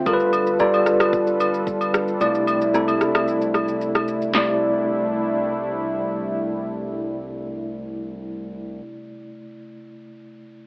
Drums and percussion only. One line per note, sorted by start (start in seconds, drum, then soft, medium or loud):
0.06 kick loud
0.06 high agogo medium
0.06 shaker medium
0.20 shaker medium
0.33 high agogo medium
0.33 shaker medium
0.47 shaker medium
0.60 kick medium
0.60 low woodblock medium
0.60 shaker medium
0.74 high agogo medium
0.74 shaker medium
0.86 cross-stick medium
0.86 shaker medium
1.00 cross-stick loud
1.00 high agogo medium
1.00 shaker medium
1.13 kick loud
1.13 shaker medium
1.27 shaker medium
1.40 high agogo medium
1.40 shaker medium
1.54 shaker medium
1.67 kick medium
1.67 shaker medium
1.81 high agogo medium
1.81 shaker soft
1.94 cross-stick loud
1.94 shaker medium
2.08 shaker soft
2.21 high agogo medium
2.21 shaker medium
2.35 shaker medium
2.47 high agogo medium
2.47 shaker medium
2.61 shaker medium
2.74 low woodblock medium
2.74 shaker medium
2.88 high agogo medium
2.88 shaker soft
3.01 cross-stick medium
3.01 shaker medium
3.15 cross-stick loud
3.15 high agogo medium
3.15 shaker medium
3.28 shaker medium
3.41 shaker medium
3.54 cross-stick medium
3.54 high agogo medium
3.54 shaker medium
3.68 shaker medium
3.81 shaker medium
3.95 cross-stick medium
3.95 high agogo medium
3.95 shaker soft
4.08 shaker medium
4.22 shaker soft
4.35 snare medium
4.35 clap medium
4.35 high agogo medium